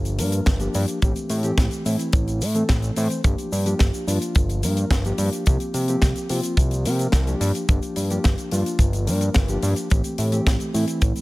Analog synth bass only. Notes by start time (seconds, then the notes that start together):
Already playing: G1
0.19 G2
0.47 G1
0.75 G2
1.02 A1
1.30 A2
1.58 A1
1.86 A2
2.13 A1
2.42 A2
2.69 A1
2.97 A2
3.24 G1
3.52 G2
3.80 G1
4.07 G2
4.36 G1
4.63 G2
4.90 G1
5.18 G2
5.47 C2
5.74 C3
6.02 C2
6.30 C3
6.57 C2
6.85 C3
7.13 C2
7.41 G2
7.69 G1
7.96 G2
8.25 G1
8.52 G2
8.79 G1
9.07 G2
9.36 G1
9.63 G2
9.91 A1
10.18 A2
10.47 A1
10.74 A2
11.02 A1
11.16 A2